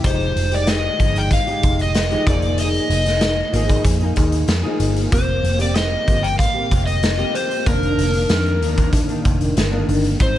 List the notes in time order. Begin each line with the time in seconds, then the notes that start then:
0.03 F1 F3 G#3 D#4 G4 C5, kick, closed hi-hat
0.20 closed hi-hat
0.36 F1, closed hi-hat
0.51 G#3 D#4 G4 D5, closed hi-hat
0.67 D#5, snare, closed hi-hat
0.98 G1 F3 G#3 D#4 G4, kick, closed hi-hat
1.16 G5, closed hi-hat
1.31 F5, kick, closed hi-hat
1.47 G#3 D#4 G4, closed hi-hat
1.63 F1, kick, closed hi-hat
1.79 D#5, closed hi-hat
1.94 snare, closed hi-hat
2.11 F3 G#3 D#4 G4, closed hi-hat
2.26 F1 F3 A#3 D#4 G#4 D5, kick, closed hi-hat
2.42 closed hi-hat
2.58 D#5, closed hi-hat
2.74 closed hi-hat
2.89 F1, closed hi-hat
3.05 A#3 D#4 G#4, snare, closed hi-hat
3.21 snare, closed hi-hat
3.52 G#1 F3 A#3 D#4 G#4, closed hi-hat
3.69 kick, closed hi-hat
3.85 F2, kick, closed hi-hat
4.00 D#4 G#4, closed hi-hat
4.04 A#3
4.16 D#2, kick, closed hi-hat
4.32 closed hi-hat
4.48 F2, snare, closed hi-hat
4.63 F3 A#3 D#4 G#4
4.79 G1, closed hi-hat
4.96 closed hi-hat
5.11 F1 F3 A#3 C4 G4 C5, kick, closed hi-hat
5.43 F1, closed hi-hat
5.59 A#3 C4 G4 D5, closed hi-hat
5.75 D#5, snare, closed hi-hat
6.06 G1 F3 A#3 C4 G4, kick, closed hi-hat
6.23 G5, closed hi-hat
6.39 F5, kick, closed hi-hat
6.54 A#3 C4 G4
6.71 F1, kick, closed hi-hat
6.86 D#5, closed hi-hat
7.03 snare, closed hi-hat
7.18 F3 A#3 C4 G4, closed hi-hat
7.35 C5, closed hi-hat
7.51 closed hi-hat
7.66 F1 F2 D#3 A#3 D4 A#4, kick, closed hi-hat
7.83 closed hi-hat
7.98 F1, closed hi-hat
8.13 D#3 A#3 D4, closed hi-hat
8.29 F2, snare, closed hi-hat
8.46 closed hi-hat
8.61 D#2 F2 D#3 A#3 D4, closed hi-hat
8.77 kick, closed hi-hat
8.93 kick, closed hi-hat
9.08 D#3 A#3 D4, closed hi-hat
9.25 F1, kick, closed hi-hat
9.41 closed hi-hat
9.57 G1, snare, closed hi-hat
9.71 F2 D#3 A#3 D4
9.88 G1, open hi-hat
10.04 closed hi-hat
10.19 G#1 G#2 G3 C4 D#4 C5, kick, closed hi-hat